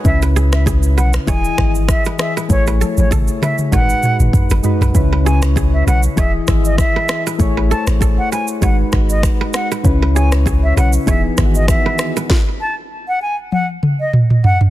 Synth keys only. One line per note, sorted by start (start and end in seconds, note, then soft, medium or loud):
0.00 1.07 C#3 medium
0.00 0.20 G#5 medium
0.05 1.08 C#4 medium
0.05 1.08 E4 medium
0.05 1.09 B4 medium
1.26 2.05 E3 medium
1.26 2.05 E4 medium
1.26 2.06 G#4 medium
1.26 2.06 D#5 medium
2.18 2.45 E3 medium
2.18 2.45 E4 medium
2.18 2.46 G#4 medium
2.18 2.46 D#5 medium
2.48 3.52 A3 medium
2.48 3.53 E4 medium
2.48 3.53 G#4 medium
2.48 2.58 B4 medium
2.58 3.57 C#5 medium
3.71 4.50 G#3 medium
3.71 4.50 D#4 medium
3.71 4.51 F#4 medium
3.71 3.80 A#4 medium
3.80 4.54 B4 medium
4.63 4.90 G#3 medium
4.63 4.90 D#4 medium
4.63 4.90 F#4 medium
4.63 4.91 B4 medium
4.93 5.20 C#3 medium
4.93 5.21 C#4 medium
4.93 5.21 E4 medium
4.93 5.21 B4 loud
5.24 6.17 C#3 medium
5.24 6.17 C#4 medium
5.24 6.15 E4 medium
5.24 6.18 C#5 medium
6.16 6.43 E3 medium
6.16 6.43 E4 medium
6.16 6.43 G#4 medium
6.16 6.44 D#5 medium
6.46 7.25 E3 medium
6.46 7.26 E4 medium
6.46 7.26 G#4 medium
6.46 7.26 E5 medium
7.38 7.65 A3 medium
7.38 7.65 E4 medium
7.38 7.66 G#4 medium
7.38 7.66 C#5 loud
7.69 8.61 A3 medium
7.69 8.62 E4 medium
7.69 8.62 G#4 medium
7.69 7.78 C5 medium
7.78 8.66 C#5 medium
8.61 8.88 G#3 medium
8.61 8.88 D#4 medium
8.61 8.88 F#4 medium
8.61 8.89 B4 medium
8.92 9.70 G#3 medium
8.92 9.71 D#4 medium
8.92 9.71 F#4 medium
8.92 9.71 B4 medium
9.83 10.10 C#3 medium
9.83 10.10 C#4 medium
9.83 10.11 E4 medium
9.83 10.11 B4 loud
10.14 11.06 C#3 medium
10.14 11.07 C#4 medium
10.14 11.07 E4 medium
10.14 11.08 C#5 medium
11.06 11.33 E3 medium
11.06 11.33 B3 medium
11.06 11.33 D#4 medium
11.06 11.34 G#4 medium
11.36 12.16 D#3 medium
11.36 12.15 E3 medium
11.36 12.16 B3 medium
11.36 11.45 E4 medium
11.45 12.20 F#4 medium